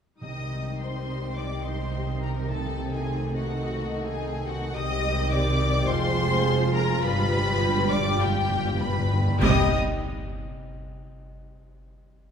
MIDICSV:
0, 0, Header, 1, 10, 480
1, 0, Start_track
1, 0, Key_signature, -3, "minor"
1, 0, Tempo, 567108
1, 185, Time_signature, 4, 2, 24, 8
1, 5461, Tempo, 591716
1, 10216, End_track
2, 0, Start_track
2, 0, Title_t, "Violin section"
2, 0, Program_c, 0, 48
2, 179, Note_on_c, 0, 87, 60
2, 639, Note_off_c, 0, 87, 0
2, 671, Note_on_c, 0, 84, 59
2, 1148, Note_off_c, 0, 84, 0
2, 1162, Note_on_c, 0, 86, 60
2, 1395, Note_on_c, 0, 84, 56
2, 1401, Note_off_c, 0, 86, 0
2, 1875, Note_off_c, 0, 84, 0
2, 1876, Note_on_c, 0, 82, 59
2, 1944, Note_off_c, 0, 82, 0
2, 2110, Note_on_c, 0, 81, 67
2, 2463, Note_off_c, 0, 81, 0
2, 2467, Note_on_c, 0, 80, 67
2, 2823, Note_off_c, 0, 80, 0
2, 2830, Note_on_c, 0, 78, 66
2, 3414, Note_off_c, 0, 78, 0
2, 3422, Note_on_c, 0, 80, 71
2, 3777, Note_off_c, 0, 80, 0
2, 3780, Note_on_c, 0, 78, 81
2, 4022, Note_off_c, 0, 78, 0
2, 4022, Note_on_c, 0, 87, 97
2, 4495, Note_on_c, 0, 86, 96
2, 4500, Note_off_c, 0, 87, 0
2, 4965, Note_off_c, 0, 86, 0
2, 4973, Note_on_c, 0, 84, 111
2, 5695, Note_off_c, 0, 84, 0
2, 5695, Note_on_c, 0, 82, 102
2, 5927, Note_off_c, 0, 82, 0
2, 5929, Note_on_c, 0, 83, 117
2, 6643, Note_off_c, 0, 83, 0
2, 6644, Note_on_c, 0, 86, 102
2, 6884, Note_off_c, 0, 86, 0
2, 6885, Note_on_c, 0, 79, 101
2, 7367, Note_on_c, 0, 83, 90
2, 7370, Note_off_c, 0, 79, 0
2, 7865, Note_on_c, 0, 87, 99
2, 7867, Note_off_c, 0, 83, 0
2, 8135, Note_off_c, 0, 87, 0
2, 10216, End_track
3, 0, Start_track
3, 0, Title_t, "Violin section"
3, 0, Program_c, 1, 48
3, 183, Note_on_c, 1, 75, 50
3, 641, Note_off_c, 1, 75, 0
3, 679, Note_on_c, 1, 72, 53
3, 1152, Note_off_c, 1, 72, 0
3, 1164, Note_on_c, 1, 74, 52
3, 1402, Note_off_c, 1, 74, 0
3, 1402, Note_on_c, 1, 72, 52
3, 1869, Note_off_c, 1, 72, 0
3, 1878, Note_on_c, 1, 70, 51
3, 2110, Note_off_c, 1, 70, 0
3, 2122, Note_on_c, 1, 69, 56
3, 2476, Note_off_c, 1, 69, 0
3, 2483, Note_on_c, 1, 68, 54
3, 2838, Note_off_c, 1, 68, 0
3, 2838, Note_on_c, 1, 66, 58
3, 3418, Note_off_c, 1, 66, 0
3, 3431, Note_on_c, 1, 68, 66
3, 3788, Note_off_c, 1, 68, 0
3, 3789, Note_on_c, 1, 66, 66
3, 4022, Note_on_c, 1, 75, 85
3, 4026, Note_off_c, 1, 66, 0
3, 4490, Note_off_c, 1, 75, 0
3, 4497, Note_on_c, 1, 74, 90
3, 4966, Note_on_c, 1, 72, 96
3, 4976, Note_off_c, 1, 74, 0
3, 5688, Note_on_c, 1, 70, 87
3, 5691, Note_off_c, 1, 72, 0
3, 5924, Note_off_c, 1, 70, 0
3, 5928, Note_on_c, 1, 71, 95
3, 6640, Note_on_c, 1, 74, 91
3, 6643, Note_off_c, 1, 71, 0
3, 6878, Note_on_c, 1, 67, 87
3, 6882, Note_off_c, 1, 74, 0
3, 7367, Note_off_c, 1, 67, 0
3, 7371, Note_on_c, 1, 71, 81
3, 7869, Note_off_c, 1, 71, 0
3, 7869, Note_on_c, 1, 75, 86
3, 8137, Note_off_c, 1, 75, 0
3, 10216, End_track
4, 0, Start_track
4, 0, Title_t, "French horn section"
4, 0, Program_c, 2, 60
4, 185, Note_on_c, 2, 51, 40
4, 189, Note_on_c, 2, 67, 40
4, 2082, Note_off_c, 2, 67, 0
4, 2105, Note_on_c, 2, 69, 52
4, 3986, Note_off_c, 2, 69, 0
4, 3991, Note_off_c, 2, 51, 0
4, 4018, Note_on_c, 2, 51, 69
4, 4019, Note_on_c, 2, 67, 65
4, 4955, Note_off_c, 2, 51, 0
4, 4974, Note_on_c, 2, 68, 81
4, 4975, Note_off_c, 2, 67, 0
4, 4977, Note_on_c, 2, 53, 79
4, 5931, Note_off_c, 2, 68, 0
4, 5941, Note_on_c, 2, 67, 86
4, 7593, Note_off_c, 2, 67, 0
4, 7621, Note_off_c, 2, 53, 0
4, 7863, Note_on_c, 2, 55, 85
4, 7863, Note_on_c, 2, 67, 81
4, 8068, Note_off_c, 2, 55, 0
4, 8068, Note_off_c, 2, 67, 0
4, 10216, End_track
5, 0, Start_track
5, 0, Title_t, "Harp"
5, 0, Program_c, 3, 46
5, 185, Note_on_c, 3, 48, 39
5, 308, Note_on_c, 3, 55, 30
5, 429, Note_on_c, 3, 60, 33
5, 553, Note_on_c, 3, 63, 36
5, 677, Note_on_c, 3, 67, 39
5, 794, Note_on_c, 3, 72, 35
5, 918, Note_on_c, 3, 75, 36
5, 1036, Note_on_c, 3, 79, 38
5, 1153, Note_off_c, 3, 75, 0
5, 1163, Note_on_c, 3, 75, 41
5, 1269, Note_off_c, 3, 79, 0
5, 1280, Note_on_c, 3, 79, 39
5, 1391, Note_off_c, 3, 75, 0
5, 1401, Note_on_c, 3, 75, 37
5, 1510, Note_off_c, 3, 67, 0
5, 1520, Note_on_c, 3, 67, 37
5, 1630, Note_off_c, 3, 60, 0
5, 1640, Note_on_c, 3, 60, 37
5, 1749, Note_off_c, 3, 55, 0
5, 1760, Note_on_c, 3, 55, 37
5, 1864, Note_off_c, 3, 60, 0
5, 1874, Note_on_c, 3, 60, 38
5, 1989, Note_off_c, 3, 55, 0
5, 1999, Note_on_c, 3, 55, 37
5, 2108, Note_off_c, 3, 48, 0
5, 2118, Note_on_c, 3, 48, 47
5, 2133, Note_off_c, 3, 67, 0
5, 2133, Note_off_c, 3, 79, 0
5, 2135, Note_off_c, 3, 55, 0
5, 2235, Note_on_c, 3, 57, 37
5, 2342, Note_off_c, 3, 60, 0
5, 2352, Note_on_c, 3, 60, 41
5, 2462, Note_off_c, 3, 63, 0
5, 2472, Note_on_c, 3, 63, 42
5, 2591, Note_on_c, 3, 69, 47
5, 2704, Note_off_c, 3, 72, 0
5, 2714, Note_on_c, 3, 72, 42
5, 2826, Note_off_c, 3, 75, 0
5, 2836, Note_on_c, 3, 75, 51
5, 2952, Note_on_c, 3, 81, 47
5, 3064, Note_off_c, 3, 75, 0
5, 3074, Note_on_c, 3, 75, 53
5, 3177, Note_off_c, 3, 81, 0
5, 3187, Note_on_c, 3, 81, 47
5, 3297, Note_off_c, 3, 75, 0
5, 3308, Note_on_c, 3, 75, 49
5, 3418, Note_off_c, 3, 69, 0
5, 3428, Note_on_c, 3, 69, 51
5, 3538, Note_off_c, 3, 60, 0
5, 3548, Note_on_c, 3, 60, 52
5, 3658, Note_off_c, 3, 57, 0
5, 3668, Note_on_c, 3, 57, 48
5, 3776, Note_off_c, 3, 60, 0
5, 3786, Note_on_c, 3, 60, 52
5, 3898, Note_off_c, 3, 57, 0
5, 3908, Note_on_c, 3, 57, 50
5, 4017, Note_off_c, 3, 48, 0
5, 4027, Note_on_c, 3, 48, 62
5, 4043, Note_off_c, 3, 81, 0
5, 4044, Note_off_c, 3, 69, 0
5, 4045, Note_off_c, 3, 57, 0
5, 4148, Note_on_c, 3, 55, 53
5, 4257, Note_off_c, 3, 60, 0
5, 4267, Note_on_c, 3, 60, 52
5, 4378, Note_off_c, 3, 63, 0
5, 4388, Note_on_c, 3, 63, 58
5, 4502, Note_on_c, 3, 67, 61
5, 4613, Note_off_c, 3, 72, 0
5, 4623, Note_on_c, 3, 72, 55
5, 4729, Note_off_c, 3, 75, 0
5, 4739, Note_on_c, 3, 75, 66
5, 4857, Note_on_c, 3, 79, 64
5, 4976, Note_on_c, 3, 41, 79
5, 4996, Note_off_c, 3, 79, 0
5, 4997, Note_off_c, 3, 67, 0
5, 4997, Note_off_c, 3, 75, 0
5, 4998, Note_off_c, 3, 48, 0
5, 4999, Note_off_c, 3, 55, 0
5, 5000, Note_off_c, 3, 63, 0
5, 5097, Note_on_c, 3, 48, 58
5, 5205, Note_off_c, 3, 60, 0
5, 5216, Note_on_c, 3, 60, 57
5, 5341, Note_on_c, 3, 65, 64
5, 5464, Note_on_c, 3, 68, 67
5, 5568, Note_off_c, 3, 72, 0
5, 5578, Note_on_c, 3, 72, 68
5, 5693, Note_on_c, 3, 77, 74
5, 5808, Note_on_c, 3, 80, 67
5, 5924, Note_on_c, 3, 43, 80
5, 5948, Note_off_c, 3, 80, 0
5, 5950, Note_off_c, 3, 60, 0
5, 5951, Note_off_c, 3, 41, 0
5, 5951, Note_off_c, 3, 48, 0
5, 5951, Note_off_c, 3, 72, 0
5, 5953, Note_off_c, 3, 68, 0
5, 6044, Note_on_c, 3, 50, 62
5, 6164, Note_on_c, 3, 55, 62
5, 6275, Note_off_c, 3, 65, 0
5, 6284, Note_on_c, 3, 65, 65
5, 6400, Note_on_c, 3, 67, 69
5, 6509, Note_off_c, 3, 65, 0
5, 6519, Note_on_c, 3, 65, 67
5, 6629, Note_off_c, 3, 77, 0
5, 6638, Note_on_c, 3, 77, 70
5, 6760, Note_on_c, 3, 79, 66
5, 6868, Note_off_c, 3, 77, 0
5, 6877, Note_on_c, 3, 77, 72
5, 6989, Note_off_c, 3, 79, 0
5, 6999, Note_on_c, 3, 79, 61
5, 7110, Note_off_c, 3, 77, 0
5, 7120, Note_on_c, 3, 77, 62
5, 7232, Note_off_c, 3, 67, 0
5, 7241, Note_on_c, 3, 67, 59
5, 7353, Note_off_c, 3, 55, 0
5, 7362, Note_on_c, 3, 55, 58
5, 7478, Note_off_c, 3, 50, 0
5, 7488, Note_on_c, 3, 50, 55
5, 7603, Note_off_c, 3, 55, 0
5, 7612, Note_on_c, 3, 55, 53
5, 7731, Note_off_c, 3, 50, 0
5, 7741, Note_on_c, 3, 50, 52
5, 7816, Note_on_c, 3, 48, 76
5, 7829, Note_off_c, 3, 55, 0
5, 7833, Note_on_c, 3, 55, 76
5, 7853, Note_off_c, 3, 67, 0
5, 7853, Note_on_c, 3, 60, 72
5, 7870, Note_on_c, 3, 63, 71
5, 7884, Note_off_c, 3, 43, 0
5, 7885, Note_off_c, 3, 50, 0
5, 7885, Note_off_c, 3, 65, 0
5, 7885, Note_off_c, 3, 77, 0
5, 7890, Note_on_c, 3, 67, 72
5, 7908, Note_on_c, 3, 75, 71
5, 8132, Note_off_c, 3, 55, 0
5, 8132, Note_off_c, 3, 63, 0
5, 8133, Note_off_c, 3, 48, 0
5, 8133, Note_off_c, 3, 60, 0
5, 8133, Note_off_c, 3, 67, 0
5, 8133, Note_off_c, 3, 75, 0
5, 9803, Note_off_c, 3, 79, 0
5, 10216, End_track
6, 0, Start_track
6, 0, Title_t, "Viola section"
6, 0, Program_c, 4, 48
6, 178, Note_on_c, 4, 55, 43
6, 180, Note_on_c, 4, 63, 40
6, 2077, Note_off_c, 4, 55, 0
6, 2111, Note_on_c, 4, 57, 49
6, 3988, Note_off_c, 4, 63, 0
6, 3989, Note_off_c, 4, 57, 0
6, 4018, Note_on_c, 4, 67, 66
6, 4019, Note_on_c, 4, 55, 66
6, 4940, Note_off_c, 4, 67, 0
6, 4941, Note_off_c, 4, 55, 0
6, 4970, Note_on_c, 4, 56, 74
6, 4972, Note_on_c, 4, 65, 79
6, 5897, Note_off_c, 4, 56, 0
6, 5931, Note_on_c, 4, 55, 81
6, 7664, Note_off_c, 4, 65, 0
6, 7666, Note_off_c, 4, 55, 0
6, 7865, Note_on_c, 4, 55, 80
6, 7865, Note_on_c, 4, 67, 81
6, 8134, Note_off_c, 4, 67, 0
6, 8135, Note_off_c, 4, 55, 0
6, 10216, End_track
7, 0, Start_track
7, 0, Title_t, "Cello section"
7, 0, Program_c, 5, 48
7, 178, Note_on_c, 5, 48, 44
7, 3987, Note_off_c, 5, 48, 0
7, 4018, Note_on_c, 5, 48, 67
7, 4955, Note_off_c, 5, 48, 0
7, 4973, Note_on_c, 5, 41, 78
7, 5929, Note_on_c, 5, 43, 87
7, 5931, Note_off_c, 5, 41, 0
7, 7665, Note_off_c, 5, 43, 0
7, 7868, Note_on_c, 5, 48, 89
7, 8136, Note_off_c, 5, 48, 0
7, 10216, End_track
8, 0, Start_track
8, 0, Title_t, "Timpani"
8, 0, Program_c, 6, 47
8, 182, Note_on_c, 6, 48, 55
8, 884, Note_off_c, 6, 48, 0
8, 2115, Note_on_c, 6, 48, 61
8, 2799, Note_off_c, 6, 48, 0
8, 5935, Note_on_c, 6, 43, 35
8, 5984, Note_off_c, 6, 43, 0
8, 5994, Note_on_c, 6, 43, 35
8, 6045, Note_off_c, 6, 43, 0
8, 6055, Note_on_c, 6, 43, 35
8, 6110, Note_off_c, 6, 43, 0
8, 6120, Note_on_c, 6, 43, 40
8, 6172, Note_off_c, 6, 43, 0
8, 6182, Note_on_c, 6, 43, 44
8, 6230, Note_off_c, 6, 43, 0
8, 6240, Note_on_c, 6, 43, 44
8, 6295, Note_off_c, 6, 43, 0
8, 6305, Note_on_c, 6, 43, 45
8, 6355, Note_off_c, 6, 43, 0
8, 6365, Note_on_c, 6, 43, 46
8, 6422, Note_off_c, 6, 43, 0
8, 6431, Note_on_c, 6, 43, 47
8, 6486, Note_off_c, 6, 43, 0
8, 6495, Note_on_c, 6, 43, 50
8, 6545, Note_off_c, 6, 43, 0
8, 6555, Note_on_c, 6, 43, 50
8, 6608, Note_off_c, 6, 43, 0
8, 6618, Note_on_c, 6, 43, 54
8, 6666, Note_off_c, 6, 43, 0
8, 6676, Note_on_c, 6, 43, 55
8, 6729, Note_off_c, 6, 43, 0
8, 6739, Note_on_c, 6, 43, 57
8, 6790, Note_off_c, 6, 43, 0
8, 6800, Note_on_c, 6, 43, 60
8, 6855, Note_off_c, 6, 43, 0
8, 6865, Note_on_c, 6, 43, 66
8, 6910, Note_off_c, 6, 43, 0
8, 6920, Note_on_c, 6, 43, 66
8, 6975, Note_off_c, 6, 43, 0
8, 6985, Note_on_c, 6, 43, 66
8, 7040, Note_off_c, 6, 43, 0
8, 7050, Note_on_c, 6, 43, 69
8, 7103, Note_off_c, 6, 43, 0
8, 7113, Note_on_c, 6, 43, 73
8, 7167, Note_off_c, 6, 43, 0
8, 7177, Note_on_c, 6, 43, 74
8, 7231, Note_off_c, 6, 43, 0
8, 7241, Note_on_c, 6, 43, 76
8, 7295, Note_off_c, 6, 43, 0
8, 7305, Note_on_c, 6, 43, 81
8, 7359, Note_off_c, 6, 43, 0
8, 7369, Note_on_c, 6, 43, 84
8, 7425, Note_off_c, 6, 43, 0
8, 7434, Note_on_c, 6, 43, 90
8, 7493, Note_off_c, 6, 43, 0
8, 7502, Note_on_c, 6, 43, 95
8, 7557, Note_off_c, 6, 43, 0
8, 7567, Note_on_c, 6, 43, 92
8, 7622, Note_off_c, 6, 43, 0
8, 7632, Note_on_c, 6, 43, 100
8, 7686, Note_off_c, 6, 43, 0
8, 7695, Note_on_c, 6, 43, 99
8, 7750, Note_off_c, 6, 43, 0
8, 7759, Note_on_c, 6, 43, 99
8, 7817, Note_off_c, 6, 43, 0
8, 7872, Note_on_c, 6, 48, 97
8, 8093, Note_off_c, 6, 48, 0
8, 10216, End_track
9, 0, Start_track
9, 0, Title_t, "Double bass section"
9, 0, Program_c, 7, 48
9, 180, Note_on_c, 7, 36, 48
9, 3988, Note_off_c, 7, 36, 0
9, 4022, Note_on_c, 7, 36, 71
9, 4957, Note_off_c, 7, 36, 0
9, 4973, Note_on_c, 7, 29, 81
9, 5928, Note_on_c, 7, 31, 89
9, 5931, Note_off_c, 7, 29, 0
9, 7664, Note_off_c, 7, 31, 0
9, 7866, Note_on_c, 7, 36, 95
9, 8135, Note_off_c, 7, 36, 0
9, 10216, End_track
10, 0, Start_track
10, 0, Title_t, "Drums"
10, 7862, Note_on_c, 9, 35, 76
10, 7862, Note_on_c, 9, 49, 71
10, 7943, Note_off_c, 9, 35, 0
10, 7943, Note_off_c, 9, 49, 0
10, 10216, End_track
0, 0, End_of_file